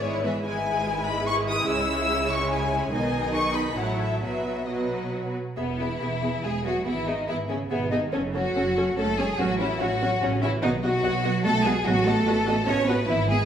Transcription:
Already playing: double bass section G#1, cello section G#2
0.02 viola section G#3 E4, violin section B4 C#5
0.23 viola section E3 B3, violin section G#4 B4 E5
0.44 double bass section G#1, cello section G#2, violin section G#3 B4 G#5, viola section G#3 E4
0.56 violin section B3
0.65 violin section E4
0.76 violin section G#4
0.86 violin section E4
0.96 violin section B3
1.07 violin section G#3 B5
1.17 violin section B3
1.27 violin section E4 C#6
1.37 violin section G#4
1.47 violin section E4 D#6
1.58 violin section B3
1.68 double bass section C#2, cello section C#3, violin section G#3 C#5 E6
1.80 violin section C#4
1.90 violin section E4
2.00 violin section G#4
2.11 violin section E4
2.21 violin section C#4
2.31 violin section G#3 C#6
2.40 violin section C#4
2.50 violin section E4 G#5
2.60 violin section G#4
2.71 violin section E4
2.80 violin section C#4
2.91 double bass section B1, cello section B2, viola section D#3 D#4, violin section G#4 D#5 G#5
3.34 violin section C#6
3.54 violin section B5
3.77 double bass section A1, cello section A2, viola section F#3 E4, violin section A4 C#5 F#5
3.99 violin section E5
4.21 double bass section B1, cello section B2, viola section F#3 B3, violin section F#4 B4 E5
4.66 viola section F#3 B3, violin section F#4 B4 D#5
5.57 double bass section E1, cello section B2, viola section B3 G#4, violin section B3 E5
5.79 cello section E3, viola section B3 G#4, violin section E4 E5
6.01 double bass section E1, viola section B3 G#4, violin section E5
6.22 viola section B3 G#4, violin section E5
6.43 double bass section E1, cello section G#3, viola section B3 G#4, violin section G#4 E5
6.64 cello section F#3, viola section B3 G#4, violin section F#4 E5
6.85 double bass section G#1, cello section E3, viola section B3 G#4, violin section E4 E5
7.07 cello section D#3, viola section B3 G#4, violin section D#4 E5
7.27 double bass section G#1, cello section E3, viola section B3 G#4, violin section E4 E5
7.49 cello section C#3, viola section B3 G#4, violin section C#4 E5
7.69 double bass section G#1, cello section B2, violin section B3 E5, viola section B3 G#4
7.91 cello section D#3, viola section B3 G#4, violin section D#4 E5
8.13 double bass section F#1, cello section C#3, violin section C#4 C#5, viola section C#4 A4
8.35 cello section F#3, viola section C#4 A4, violin section F#4 C#5
8.56 double bass section F#1, viola section C#4 A4, violin section C#5
8.77 viola section C#4 A4, violin section C#5
8.97 double bass section F#1, cello section A3, viola section C#4 A4, violin section A4 C#5
9.19 cello section G#3, viola section C#4 A4, violin section G#4 C#5
9.39 double bass section A1, cello section F#3, viola section C#4 F#4, violin section F#4 C#5
9.59 cello section E3, viola section C#4 F#4, violin section E4 C#5
9.80 double bass section A1, cello section F#3, viola section C#4 F#4, violin section F#4 C#5
10.02 viola section C#4 F#4, violin section C#5
10.21 double bass section A1, cello section C#3, violin section C#4 C#5, viola section C#4 F#4
10.42 cello section E3, viola section C#4 F#4, violin section E4 C#5
10.62 double bass section B1, cello section D#3, viola section B3 F#4, violin section D#4 D#5
10.83 cello section F#3, viola section B3 F#4, violin section F#4 D#5
11.03 double bass section B1, viola section B3 F#4, violin section D#5
11.23 viola section B3 F#4, violin section D#5
11.44 double bass section B1, cello section A3, viola section B3 F#4, violin section A4 D#5
11.64 cello section G#3, viola section B3 F#4, violin section G#4 D#5
11.85 double bass section A1, cello section F#3, viola section B3 F#4, violin section F#4 D#5
12.06 cello section A3, viola section B3 F#4, violin section A4 D#5
12.26 double bass section A1, viola section B3 F#4, violin section D#5
12.47 viola section B3 F#4, violin section D#5
12.67 double bass section A1, viola section B3 F#4, cello section C#4, violin section C#5 D#5
12.87 cello section B3, viola section B3 F#4, violin section B4 D#5
13.08 double bass section G#1, cello section E3, viola section B3 E4, violin section E4 E5
13.29 cello section G#3, viola section B3 E4, violin section G#4 E5

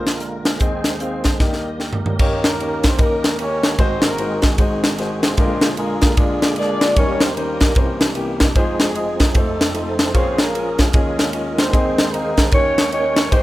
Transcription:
Already playing: grand piano A#1 A#2, tonewheel organ D3 G#3 A#3 F4 A#4
0.07 snare, closed hi-hat
0.20 grand piano D5 A#5, closed hi-hat
0.45 grand piano C5 G#5, snare, closed hi-hat
0.59 grand piano D#2 D#3 C4 D#4 G#4 D#5, tonewheel organ D#3 G#3 C4 G#4 C5, kick, closed hi-hat
0.84 snare, closed hi-hat
1.00 grand piano C4 D#4 G#4 F5, closed hi-hat
1.24 kick, snare, closed hi-hat
1.39 grand piano D#2 D#3 A#3 D#4 G4 D#5, tonewheel organ G3 A#3 G4 A#4, kick, snare
1.53 snare
1.80 grand piano A#4 G5, snare
1.93 floor tom
2.05 grand piano C#5 A#5, floor tom
2.18 grand piano D#2 D#3 A#3 D#4 G4 C#5, tonewheel organ D#3 A#3 C#4 G4 A#4, horn section A#3 C#4 G4 A#4, kick, crash
2.44 horn section A#3 C#4 G4 A#4, snare, ride
2.59 grand piano A#3 D#4 G4 C#5, ride
2.83 horn section C4 C5, kick, snare, ride
2.98 grand piano A#3 D#4 G4 D#5, horn section A#3 C#4 G4 A#4, kick, ride
3.24 snare, ride
3.39 grand piano A#3 D#4 G4 C#5, horn section C#4 G4 A#4 C#5, ride
3.63 snare, ride
3.78 grand piano G#1 G#2 G#3 D#4 F#4 C5, tonewheel organ G#3 C4 F#4 G#4, horn section C4 D#4 F#4 C5, kick, ride
4.02 horn section A#3 D#4 F#4 A#4, snare, ride
4.18 grand piano G#3 D#4 F#4 C5, ride
4.42 horn section G#3 G#4, kick, snare, ride
4.58 grand piano G#3 D#4 F#4 C5, horn section G#3 C4 D#4 G#4, kick, ride
4.84 snare, ride
4.98 grand piano G#3 D#4 F#4 C5, ride
5.23 horn section C4 F4 G#4 C5, snare, ride
5.37 grand piano A#1 A#2 G#3 D4 F4 A#4, tonewheel organ D3 A#3 F4 G#4, kick, ride
5.61 snare, ride
5.77 grand piano G#3 D4 F4 G#4, horn section A#3 D4 F4 A#4, ride
6.01 kick, snare, ride
6.17 grand piano G#3 D4 F4 A#4, horn section D4 F4 G#4 D5, kick, ride
6.42 snare, ride
6.56 grand piano G#3 D4 F4 A#4, horn section D4 F4 G#4 D5, ride
6.81 snare, ride
6.95 grand piano D#2 D#3 G3 C#4 A#4, tonewheel organ D#3 G3 D#4 G4, horn section C#4 G4 A#4 C#5, kick, ride
6.99 grand piano D#4
7.20 horn section C4 C5, snare, ride
7.35 grand piano G3 C#4 D#4 C5, horn section A#3 C#4 G4 A#4, ride
7.60 kick, snare, ride
7.75 grand piano C2 C3 A#3 C#4 E4 C5, tonewheel organ C3 E3, kick, ride
8.01 snare, ride
8.15 grand piano A#3 C#4 E4 G4, ride
8.40 kick, snare, ride
8.55 grand piano F1 F2 G#3 D#4 F4 C5, tonewheel organ F3 G#3 C4 D#4 G#4, horn section G#3 C4 D#4 G#4, kick, ride
8.80 horn section G#3 C4 D#4 G#4, snare, ride
8.95 grand piano G#3 D#4 F4 D#5, ride
9.20 horn section A#3 A#4, kick, snare, ride
9.34 grand piano F1 F2 A3 D#4 F4 C5, horn section A3 C4 D#4 A4, tonewheel organ A3 D#4 A4, kick, ride
9.61 snare, ride
9.73 grand piano A3 D#4 F4 D#5, horn section C4 D#4 A4 C5, ride
9.99 snare, ride
10.14 grand piano A#1 A#2 A#3 F4 G#4 C#5, tonewheel organ F3 A#3 C#4 G#4 A#4, horn section C4 F4 G#4 C5, kick, ride
10.38 horn section A#3 C#4 F4 A#4, snare, ride
10.54 grand piano A#3 F4 G#4 A#4, ride
10.78 horn section G#3 G#4, kick, snare, ride
10.93 grand piano D#2 D#3 C#4 F4 G#4 D#5, tonewheel organ D#3 G#3 F4, horn section G#3 C#4 F4 G#4, kick, ride
11.19 snare, ride
11.33 grand piano C#4 F4 G#4 D#5, ride
11.57 horn section C4 D#4 G#4 C5, snare, ride
11.73 grand piano D#2 D#3 C4 D#4 G#4 D#5, tonewheel organ C4 G#4 C5, kick, ride
11.98 snare, ride
12.10 horn section A#3 D#4 A#4, grand piano C4 D#4 G#4, ride
12.14 grand piano D#5
12.37 kick, snare, ride
12.51 grand piano D#2 D#3 A#3 D#4 G4 C#5, tonewheel organ A#3 C#4 C#5 G5, horn section C#4 G4 A#4 C#5, kick, ride
12.78 snare, ride
12.92 grand piano A#3 D#4 G4 D#5, horn section C#4 G4 A#4 C#5, ride
13.16 snare, ride
13.32 grand piano G#1 G#2 G#3 D#4 G4 C5, tonewheel organ G#3 C4 C5, horn section C4 D#4 G4 C5, kick, ride

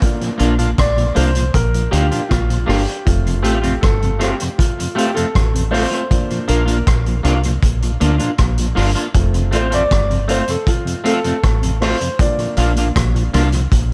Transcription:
0.02 grand piano A#3 D4 F4, kick, closed hi-hat
0.21 tonewheel organ A#2 F3, closed hi-hat
0.38 fingered electric bass A#1, clean electric guitar A#3 D4 F4, tonewheel organ A#3 D4 F4, closed hi-hat
0.59 tonewheel organ A#2 F3, clean electric guitar A#3 D4 F4, closed hi-hat
0.78 fingered electric bass A#1, grand piano D5, kick, cross-stick, closed hi-hat
0.97 tonewheel organ A#2 F3, closed hi-hat
1.15 fingered electric bass C2, clean electric guitar A#3 D4 F4, tonewheel organ A#3 D4 F4, grand piano C5, closed hi-hat
1.35 tonewheel organ A#2 F3, closed hi-hat
1.54 fingered electric bass A#1, grand piano A#4, kick, closed hi-hat
1.74 tonewheel organ A#2 F3, closed hi-hat
1.91 fingered electric bass D2, clean electric guitar A#3 D4 F4, tonewheel organ A#3 D4 F4, grand piano G4, closed hi-hat
2.11 tonewheel organ A#2 F3, clean electric guitar A#3 D4 F4, closed hi-hat
2.29 fingered electric bass A#1, grand piano F4, kick, cross-stick, closed hi-hat
2.50 tonewheel organ A#2 F3, closed hi-hat
2.66 fingered electric bass G1, clean electric guitar A#3 D4 F4, tonewheel organ A#3 D4 F4, grand piano G4, cross-stick, open hi-hat
2.88 closed hi-hat
3.05 fingered electric bass F1, grand piano A3 C4 F4, kick, closed hi-hat
3.26 tonewheel organ F2 C3, closed hi-hat
3.42 fingered electric bass A1, clean electric guitar A3 C4 F4, tonewheel organ A3 C4 F4, grand piano G4, closed hi-hat
3.62 tonewheel organ F2 C3, clean electric guitar A3 C4 F4, closed hi-hat
3.81 fingered electric bass G1, grand piano A4, kick, cross-stick, closed hi-hat
4.02 tonewheel organ F2 C3, closed hi-hat
4.19 clean electric guitar A3 C4 F4, tonewheel organ A3 C4 F4, grand piano G4, cross-stick, closed hi-hat
4.40 tonewheel organ F2 C3, closed hi-hat
4.58 grand piano F4, kick, closed hi-hat
4.80 tonewheel organ F2 C3, closed hi-hat
4.95 clean electric guitar A3 C4 F4, tonewheel organ A3 C4 F4, grand piano G4, closed hi-hat
5.14 tonewheel organ F2 C3, clean electric guitar A3 C4 F4, grand piano A4, closed hi-hat
5.35 fingered electric bass A1, kick, cross-stick, closed hi-hat
5.55 tonewheel organ F2 C3, closed hi-hat
5.71 clean electric guitar A3 C4 F4, tonewheel organ A3 C4 F4, grand piano C5, cross-stick, open hi-hat
5.90 clean electric guitar A3 C4 F4, closed hi-hat
6.10 grand piano A#3 D4 F4, kick, closed hi-hat
6.30 tonewheel organ A#2 F3, closed hi-hat
6.48 fingered electric bass A#1, clean electric guitar A#3 D4 F4, tonewheel organ A#3 D4 F4, grand piano A#4, closed hi-hat
6.66 tonewheel organ A#2, clean electric guitar A#3 D4 F4, closed hi-hat
6.70 tonewheel organ F3
6.87 fingered electric bass A#1, kick, cross-stick, closed hi-hat
7.06 tonewheel organ A#2 F3, closed hi-hat
7.23 fingered electric bass C2, clean electric guitar A#3 D4 F4, tonewheel organ A#3 D4 F4, cross-stick, closed hi-hat
7.43 tonewheel organ A#2 F3, closed hi-hat
7.63 fingered electric bass A#1, kick, closed hi-hat
7.82 tonewheel organ A#2 F3, closed hi-hat
8.00 fingered electric bass D2, clean electric guitar A#3 D4 F4, tonewheel organ A#3 D4 F4, closed hi-hat
8.18 tonewheel organ A#2 F3, clean electric guitar A#3 D4 F4, closed hi-hat
8.38 fingered electric bass A#1, kick, cross-stick, closed hi-hat
8.58 tonewheel organ A#2 F3, closed hi-hat
8.75 fingered electric bass G1, clean electric guitar A#3 D4 F4, tonewheel organ A#3 D4 F4, cross-stick, open hi-hat
8.95 clean electric guitar A#3 D4 F4, closed hi-hat
9.14 fingered electric bass F1, grand piano A3 C4 F4, kick, closed hi-hat
9.34 tonewheel organ F2 C3, closed hi-hat
9.51 fingered electric bass A1, clean electric guitar A3 C4 F4, tonewheel organ A3 C4 F4, closed hi-hat
9.55 grand piano C5
9.70 tonewheel organ F2 C3, clean electric guitar A3 C4 F4, grand piano D5, closed hi-hat
9.91 fingered electric bass G1, kick, cross-stick, closed hi-hat
10.10 tonewheel organ F2 C3, closed hi-hat
10.28 clean electric guitar A3 C4 F4, tonewheel organ A3 C4 F4, grand piano C5, closed hi-hat
10.48 tonewheel organ F2 C3, grand piano A4, closed hi-hat
10.67 grand piano F4, kick, closed hi-hat
10.85 tonewheel organ F2 C3, closed hi-hat
11.04 clean electric guitar A3 C4 F4, tonewheel organ A3 C4 F4, grand piano A4, closed hi-hat
11.24 tonewheel organ F2 C3, clean electric guitar A3 C4 F4, closed hi-hat
11.43 fingered electric bass A1, kick, cross-stick, closed hi-hat
11.62 tonewheel organ F2 C3, closed hi-hat
11.80 tonewheel organ A3 C4 F4, clean electric guitar A3 C4 F4, grand piano C5, cross-stick, open hi-hat
12.01 tonewheel organ F2 C3, closed hi-hat
12.19 grand piano A#3 D4 F4 D5, kick, closed hi-hat
12.38 tonewheel organ A#2 F3, closed hi-hat
12.56 fingered electric bass A#1, tonewheel organ A#3 D4 F4, clean electric guitar A#3 D4 F4, closed hi-hat
12.75 tonewheel organ A#2 F3, clean electric guitar A#3 D4 F4, closed hi-hat
12.96 fingered electric bass A#1, kick, cross-stick, closed hi-hat
13.14 tonewheel organ A#2 F3, closed hi-hat
13.33 fingered electric bass C2, tonewheel organ A#3 D4 F4, clean electric guitar A#3 D4 F4, cross-stick, closed hi-hat
13.52 tonewheel organ A#2 F3, closed hi-hat
13.72 fingered electric bass A#1, kick, closed hi-hat

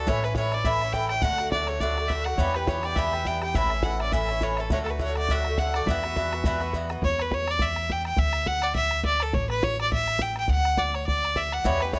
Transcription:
0.07 upright bass A1, bouzouki A2 E3 C#4 E4, fiddle C#5, bodhran
0.15 bodhran
0.23 bouzouki E3 C#4 E4, fiddle B4, bodhran
0.35 bouzouki A2 E3 C#4 E4, fiddle C#5, bodhran
0.52 bouzouki E3 C#4 E4, fiddle D5, bodhran
0.65 bouzouki A2 E3 C#4 E4, fiddle E5, bodhran
0.81 bouzouki E3 C#4 E4, bodhran
0.93 bouzouki A2 E3 C#4 E4, fiddle G5, bodhran
1.09 bouzouki C#4 E4, fiddle G5, bodhran
1.13 bouzouki E3
1.22 upright bass D2, bouzouki A2 D3 A3 F#4, fiddle F#5, bodhran
1.30 bodhran
1.38 bouzouki A3 F#4, bodhran
1.43 bouzouki D3
1.52 bouzouki A2 D3 A3 F#4, fiddle D5, bodhran
1.67 bouzouki A3 F#4, fiddle C#5, bodhran
1.72 bouzouki D3
1.80 bouzouki A2 D3 A3 F#4, fiddle D5, bodhran
1.97 bouzouki D3 A3 F#4, bodhran
2.08 bouzouki A2 D3 A3 F#4, fiddle E5, bodhran
2.24 bouzouki A3 F#4, fiddle F#5, bodhran
2.29 bouzouki D3
2.38 upright bass E2, bouzouki G2 E3 B3 G4, fiddle C#5, bodhran
2.47 bodhran
2.54 bouzouki E3 B3 G4, fiddle B4, bodhran
2.67 bouzouki G2 E3 B3 G4, fiddle C#5, bodhran
2.83 bouzouki E3 B3 G4, fiddle D5, bodhran
2.96 bouzouki G2 E3 B3 G4, fiddle E5, bodhran
3.12 bouzouki E3 B3 G4, bodhran
3.25 bouzouki G2 E3 B3 G4, fiddle G5, bodhran
3.42 bouzouki E3 B3 G4, fiddle G5, bodhran
3.54 upright bass A1, bouzouki A2 E3 C#4 E4, fiddle E5, bodhran
3.63 bodhran
3.70 bouzouki E3 C#4 E4, bodhran
3.83 bouzouki A2 E3 C#4 E4, fiddle F#5, bodhran
3.99 bouzouki E3 C#4 E4, fiddle D5, bodhran
4.12 bouzouki A2 E3 C#4 E4, fiddle E5, bodhran
4.29 bouzouki E3 C#4 E4, bodhran
4.41 bouzouki A2 E3 C#4 E4, fiddle C#5, bodhran
4.57 bouzouki C#4 E4, fiddle A4, bodhran
4.61 bouzouki E3
4.70 upright bass D2, bouzouki A2 D3 A3 F#4, fiddle C#5, bodhran
4.79 bodhran
4.84 bouzouki F#4, fiddle A4, bodhran
4.89 bouzouki D3 A3, fiddle B4
4.99 bouzouki A2 D3 A3 F#4, fiddle C#5, bodhran
5.15 bouzouki A3 F#4, fiddle D5, bodhran
5.20 bouzouki D3
5.29 bouzouki A2 D3 A3 F#4, fiddle E5, bodhran
5.45 bouzouki F#4, bodhran
5.49 bouzouki D3 A3
5.58 bouzouki A2 D3 A3 F#4, fiddle F#5, bodhran
5.74 bouzouki D3 A3 F#4, fiddle D5, bodhran
5.86 upright bass E2, bouzouki G2 E3, fiddle E5, bodhran
5.90 bouzouki B3 F#4
5.96 bodhran
6.03 bouzouki E3 B3 F#4, bodhran
6.16 bouzouki G2 E3 B3 F#4, bodhran
6.33 bouzouki E3 B3 F#4, bodhran
6.44 bouzouki G2 E3 B3 F#4, bodhran
6.60 bouzouki E3 B3 F#4, bodhran
6.73 bouzouki G2 E3 B3 F#4, bodhran
6.89 bouzouki E3 B3 F#4, bodhran
7.02 upright bass E2, fiddle C#5, bodhran
7.12 bodhran
7.19 fiddle B4, bodhran
7.31 fiddle C#5, bodhran
7.48 fiddle D5, bodhran
7.59 fiddle E5, bodhran
7.76 bodhran
7.90 fiddle G5, bodhran
8.05 fiddle G5, bodhran
8.17 upright bass D2, fiddle E5, bodhran
8.25 bodhran
8.33 bodhran
8.46 fiddle F#5, bodhran
8.62 fiddle D5, bodhran
8.75 fiddle E5, bodhran
8.91 bodhran
9.04 fiddle D5, bodhran
9.20 fiddle A4, bodhran
9.33 upright bass A1, fiddle C#5, bodhran
9.42 bodhran
9.50 fiddle B4, bodhran
9.63 fiddle C#5, bodhran
9.80 fiddle D5, bodhran
9.92 fiddle E5, bodhran
10.08 bodhran
10.19 fiddle G5, bodhran
10.36 fiddle G5, bodhran
10.48 upright bass D2, fiddle F#5, bodhran
10.58 bodhran
10.65 bodhran
10.77 fiddle D5, bodhran
10.94 fiddle C#5, bodhran
11.07 fiddle D5, bodhran
11.25 bodhran
11.36 fiddle E5, bodhran
11.52 fiddle F#5, bodhran
11.64 upright bass E2, bouzouki G2 E3 B3 G4, fiddle C#5, bodhran
11.74 bodhran
11.80 bouzouki B3 G4, fiddle B4, bodhran
11.85 bouzouki E3
11.93 bouzouki G2 E3 B3 G4, fiddle C#5, bodhran

